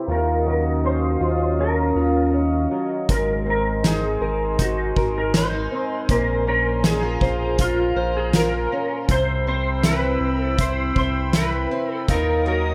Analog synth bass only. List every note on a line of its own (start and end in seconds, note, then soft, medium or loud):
0.08 1.17 D#2 medium
1.21 1.92 D#2 medium
1.96 2.67 D#2 medium
3.09 4.17 G#1 medium
4.21 4.93 G#1 medium
4.96 5.67 G#1 medium
6.09 7.17 A#1 loud
7.21 7.93 A#1 medium
7.96 8.67 A#1 medium
9.09 10.17 C2 medium
10.20 10.92 C2 medium
10.96 11.67 C2 medium
12.08 12.74 D#2 loud